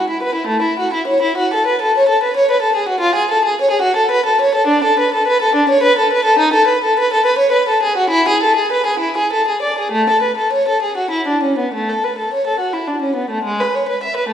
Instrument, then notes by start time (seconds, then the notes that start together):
violin
0.10 E4
0.23 B4
0.35 E4
0.47 A3
0.62 E4
0.79 F#4
0.93 E4
1.07 C#5
1.22 E4
1.38 F#4
1.54 A4
1.67 B4
1.82 A4
1.97 C#5
2.09 A4
2.23 B4
2.36 C#5
2.51 B4
2.62 A4
2.75 G#4
2.88 F#4
3.01 F4
3.15 G#4
3.31 A4
3.45 G#4
3.61 C#5
3.71 G#4
3.82 F#4
3.97 A4
4.11 B4
4.26 A4
4.41 C#5
4.55 A4
4.67 D4
4.84 A4
5.00 B4
5.14 A4
5.27 B4
5.42 A4
5.55 D4
5.69 C#5
5.83 B4
5.99 A4
6.13 B4
6.25 A4
6.39 D#4
6.54 A4
6.67 B4
6.84 A4
6.99 B4
7.13 A4
7.26 B4
7.38 C#5
7.52 B4
7.69 A4
7.83 G#4
7.97 F#4
8.10 E4
8.29 G#4
8.43 A4
8.56 G#4
8.72 B4
8.87 G#4
9.00 E4
9.17 G#4
9.33 A4
9.48 G#4
9.62 D5
9.79 G#4
9.92 A3
10.10 A4
10.22 B4
10.38 A4
10.53 C#5
10.68 A4
10.82 G#4
10.98 F#4
11.11 E4
11.28 D4
11.43 C#4
11.59 B3
11.74 A3
11.89 A4
12.04 B4
12.18 A4
12.34 C#5
12.47 A4
12.60 F#4
12.73 E4
12.87 D4
13.02 C#4
13.16 B3
13.30 A3
13.44 G#3
13.60 B4
13.75 C#5
13.89 B4
14.03 E5
14.17 B4
14.29 A3